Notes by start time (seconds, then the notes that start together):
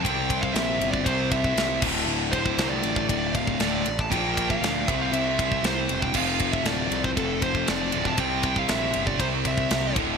0.04 C2 C3 G3 G5, kick, ride
0.08 C4
0.30 kick, ride
0.41 F5, kick
0.53 A#1 E5, snare, ride
0.79 G1, ride
0.91 D5, kick
1.04 C2 C5, kick, ride
1.31 E5, kick, ride
1.44 kick
1.55 C2, snare, ride
1.81 D1 D2 A2, kick, crash
1.85 D3
2.06 D1
2.32 C5, kick, ride
2.46 kick
2.58 C2, snare, ride
2.69 D5
2.83 A1, ride
2.96 kick
3.09 D1 D5, kick, ride
3.35 F5, kick, ride
3.47 kick
3.60 D1 D2 A2 D3 D5, snare, ride
3.86 A1, ride
3.99 A5, kick
4.10 A#1 A#2 F3 A#3 G5, kick, ride
4.37 kick, ride
4.50 F5, kick
4.62 D2, snare, ride
4.87 C2 C3 G3 E5, kick, ride
4.91 C4
5.02 F5
5.12 C2 E5, ride
5.39 kick, ride
5.52 kick
5.63 C2 C5, snare, ride
5.89 E1, ride
6.02 G5, kick
6.14 F1 F2 C3 F3 F5, kick, crash
6.40 kick, ride
6.53 E5, kick
6.64 D1 D5, snare, ride
6.90 C2, ride
7.04 C5, kick
7.17 F1 A4, kick, ride
7.42 C5, kick, ride
7.55 kick
7.68 F1 D5, snare, ride
7.91 D1 F2 C3 F3, ride
8.05 A5, kick
8.16 C2 C3 G3 C4 G5, kick, ride
8.43 kick, ride
8.56 F5, kick
8.69 A#1 E5, snare, ride
8.94 G1, ride
9.07 D5, kick
9.19 C2 C5, kick, ride
9.45 E5, kick, ride
9.58 kick
9.71 C2, snare, ride
9.95 D1 D2 A2, kick, ride
9.99 D3